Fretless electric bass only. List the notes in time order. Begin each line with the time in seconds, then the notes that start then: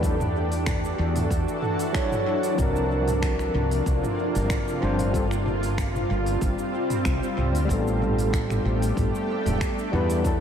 Already playing: E2
0.99 E2
1.31 E2
2.58 C2
3.54 C2
3.86 C2
4.35 G1
4.82 G1
6.10 G1
6.42 G1
7.05 C2
7.37 C2
7.54 D2
7.69 A1
8.65 A1
8.97 A1
9.46 E1
9.93 E2